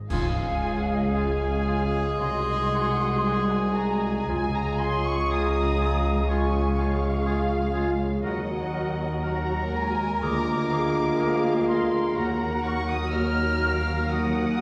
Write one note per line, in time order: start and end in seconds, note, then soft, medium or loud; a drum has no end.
0.00 0.14 G#2 medium
0.00 0.14 C4 soft
0.00 0.87 G#4 soft
0.00 0.14 C5 soft
0.00 0.15 D#5 soft
0.00 1.14 G#5 soft
0.00 0.14 D#6 medium
0.09 2.16 C#2 medium
0.09 2.24 C#3 medium
0.09 2.16 F3 medium
0.09 4.24 G#3 medium
0.09 1.10 G#3 medium
0.09 2.16 C#4 medium
0.09 2.16 F4 medium
0.09 0.28 F4 medium
0.09 0.26 G#4 medium
0.09 1.11 G#4 medium
0.09 4.24 G#4 loud
0.09 0.73 F5 loud
0.09 1.16 F5 loud
0.09 1.11 G#5 loud
0.09 concert bass drum medium
0.09 crash medium
0.36 2.46 G#3 medium
0.62 0.79 F4 medium
0.62 0.78 G#4 medium
0.62 1.92 C#5 medium
0.78 0.87 F#5 loud
0.86 1.65 G#4 medium
0.86 0.96 F5 medium
0.96 1.05 D#5 loud
1.04 1.14 F5 medium
1.13 2.18 G#3 medium
1.13 1.32 F4 medium
1.13 2.18 G#4 medium
1.13 1.30 G#4 medium
1.13 2.20 F5 medium
1.13 2.19 G#5 loud
1.13 5.05 G#5 medium
1.40 2.24 C#6 medium
1.66 1.83 F4 medium
1.66 1.82 G#4 medium
1.66 2.98 G#4 medium
1.93 2.24 C#5 medium
2.19 4.24 C2 medium
2.19 4.24 C2 loud
2.19 4.32 C3 medium
2.19 4.28 D#3 medium
2.19 4.24 G#3 loud
2.19 4.29 C4 medium
2.19 4.28 F#4 loud
2.19 2.37 F#4 medium
2.19 4.29 F#4 loud
2.19 2.35 G#4 medium
2.19 2.74 D#5 medium
2.19 3.52 C6 loud
2.47 4.53 G#3 medium
2.73 2.90 F#4 medium
2.73 2.89 G#4 medium
2.73 4.01 D#5 medium
2.73 3.27 F#5 medium
3.00 3.76 G#4 medium
3.26 3.42 F#4 medium
3.26 3.42 G#4 medium
3.26 5.31 G#5 loud
3.51 3.78 G#5 medium
3.51 3.77 G#5 loud
3.77 3.93 F#4 medium
3.77 5.04 G#4 medium
3.77 3.93 G#4 medium
3.77 4.27 A#5 loud
4.02 4.32 D#5 medium
4.27 8.24 C#2 medium
4.27 8.19 C#3 medium
4.27 8.07 F3 medium
4.27 8.07 G#3 medium
4.27 6.25 G#3 medium
4.27 8.20 C#4 medium
4.27 8.20 F4 medium
4.27 6.28 F4 medium
4.27 4.45 F4 medium
4.27 4.44 G#4 medium
4.27 7.93 G#4 medium
4.27 4.53 G#5 loud
4.31 4.55 G#5 loud
4.53 6.52 G#3 medium
4.53 4.80 A#5 medium
4.53 4.81 A#5 loud
4.79 4.96 F4 medium
4.79 4.95 G#4 medium
4.79 6.03 C#5 medium
4.79 5.07 C6 medium
4.79 5.06 C6 loud
5.05 5.79 G#4 medium
5.05 5.32 C#6 loud
5.05 5.31 C#6 loud
5.30 5.48 F4 medium
5.30 5.46 G#4 medium
5.30 7.25 F5 medium
5.30 6.29 A#5 medium
5.30 6.30 D#6 loud
5.55 7.49 C#6 medium
5.79 5.97 F4 medium
5.79 5.95 G#4 medium
5.79 7.01 G#4 medium
6.04 6.76 C#5 medium
6.28 8.20 G#3 loud
6.28 8.28 C#4 medium
6.28 8.20 F4 loud
6.28 6.46 F4 medium
6.28 6.45 G#4 medium
6.28 6.77 G#5 loud
6.28 7.74 C#6 medium
6.28 7.75 C#6 medium
6.53 8.28 G#3 medium
6.77 6.96 F4 medium
6.77 6.93 G#4 medium
6.77 7.98 C#5 medium
6.77 8.24 F5 loud
7.02 7.74 G#4 medium
7.26 7.44 F4 medium
7.26 7.42 G#4 medium
7.26 8.28 F5 medium
7.50 8.28 C#6 medium
7.74 7.92 F4 medium
7.74 7.90 G#4 medium
7.74 8.28 G#4 medium
7.99 8.28 C#5 medium
8.22 10.18 D#2 medium
8.22 10.25 D#3 medium
8.22 10.22 D#3 medium
8.22 10.18 F#3 loud
8.22 9.22 F#3 medium
8.22 12.13 A#3 medium
8.22 10.05 F#4 medium
8.22 9.22 F#4 medium
8.22 8.41 F#4 medium
8.22 8.39 A#4 medium
8.22 12.14 A#4 loud
8.22 9.22 D#5 medium
8.22 9.25 F#5 loud
8.22 9.20 F#5 loud
8.49 10.25 F#3 medium
8.74 8.91 F#4 medium
8.74 9.97 A#4 medium
8.74 8.90 A#4 medium
8.99 9.72 F#4 medium
9.23 9.72 F#3 medium
9.23 10.20 F#4 medium
9.23 9.42 F#4 medium
9.23 9.40 A#4 medium
9.23 10.26 F#5 medium
9.23 9.73 F#5 medium
9.23 10.22 A#5 loud
9.23 10.20 A#5 loud
9.49 11.44 A#5 medium
9.73 10.21 G#3 medium
9.73 9.90 F#4 medium
9.73 9.90 A#4 medium
9.73 10.22 G#5 loud
10.21 12.14 D2 medium
10.21 12.22 D3 medium
10.21 12.13 F3 medium
10.21 12.18 G#3 medium
10.21 12.14 A#3 loud
10.21 12.14 F4 loud
10.21 12.14 G#4 loud
10.21 10.39 G#4 medium
10.21 10.38 A#4 medium
10.21 10.69 A#5 loud
10.21 11.67 D6 loud
10.21 11.69 D6 loud
10.46 12.21 G#3 medium
10.70 10.87 G#4 medium
10.70 10.86 A#4 medium
10.70 11.92 A#4 medium
10.70 12.18 F5 medium
10.96 11.68 G#4 medium
11.18 11.34 G#4 medium
11.18 11.35 A#4 medium
11.45 13.13 A#5 medium
11.68 11.84 G#4 medium
11.68 12.22 G#4 medium
11.68 11.85 A#4 medium
11.68 12.18 C6 loud
11.68 12.17 C6 loud
11.94 14.61 A#4 medium
12.17 14.61 D#2 medium
12.17 14.61 D#3 medium
12.17 14.61 F#3 medium
12.17 14.07 A#3 loud
12.17 14.61 A#3 medium
12.17 12.33 F#4 medium
12.17 14.07 F#4 medium
12.17 14.61 F#4 medium
12.17 12.34 A#4 medium
12.17 14.61 A#4 loud
12.17 13.15 F#5 loud
12.17 12.67 A#5 loud
12.17 12.65 A#5 loud
12.42 14.34 D#4 medium
12.65 12.81 F#4 medium
12.65 13.86 F#4 medium
12.65 12.83 A#4 medium
12.65 12.90 C#6 loud
12.65 12.88 C#6 loud
12.89 13.14 D#6 loud
13.12 13.31 F#4 medium
13.12 13.30 A#4 medium
13.12 13.64 D#5 medium
13.12 14.13 F6 loud
13.12 14.12 F6 loud
13.63 13.80 F#4 medium
13.63 13.79 A#4 medium
13.63 14.61 D#5 medium
13.63 14.12 F5 medium
14.11 14.61 F#3 medium
14.11 14.61 A#3 loud
14.11 14.61 F#4 loud
14.11 14.28 F#4 medium
14.11 14.27 A#4 medium
14.11 14.61 F#5 loud
14.11 14.61 D#6 loud
14.36 14.61 D#4 medium